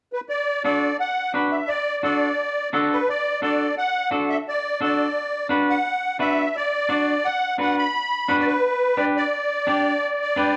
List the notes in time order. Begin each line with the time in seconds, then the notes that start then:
0.13 B4
0.29 D5
0.64 D4 F#4 A4 D5
1.00 F#5
1.34 D4 F#4 B4
1.51 E5
1.68 D5
2.03 D4 F#4 A4 D5
2.73 D4 F#4 A4
2.92 B4
3.09 D5
3.42 D4 F#4 A4 D5
3.78 F#5
4.11 D4 F#4 A4
4.30 E5
4.48 D5
4.81 D4 F#4 A4 D5
5.49 D4 F#4 B4
5.70 F#5
6.19 D4 F#4 B4 E5
6.56 D5
6.89 D4 F#4 D5
7.25 F#5
7.58 D4 F#4 B4 F#5
7.78 B5
8.28 D4 F#4 B4
8.39 D5
8.46 B4
8.97 D4 G4 B4 D5
9.17 D5
9.67 D4 G4 D5
10.36 D4 G4 B4